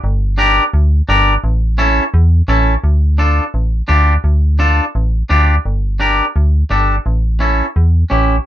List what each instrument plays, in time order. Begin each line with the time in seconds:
0.04 fm bass G1
0.38 clean electric guitar D4 G4 A#4
0.74 fm bass D2
1.09 fm bass G1, clean electric guitar D4 G4 A#4
1.44 fm bass A1
1.78 clean electric guitar C#4 E4 A4
2.14 fm bass E2
2.48 fm bass A1, clean electric guitar C#4 E4 A4
2.84 fm bass D2
3.18 clean electric guitar D4 F4 A4
3.54 fm bass A1
3.88 fm bass D2, clean electric guitar D4 F4 G4
4.24 fm bass D2
4.59 clean electric guitar D4 F4 A4
4.95 fm bass A1
5.29 fm bass D2, clean electric guitar D4 F4 G4
5.65 fm bass G1
6.00 clean electric guitar D4 G4 A#4
6.36 fm bass D2
6.70 fm bass G1, clean electric guitar D4 G4 A4
7.06 fm bass A1
7.40 clean electric guitar C#4 E4 A4
7.76 fm bass E2
8.10 fm bass A1, clean electric guitar C#4 E4 G4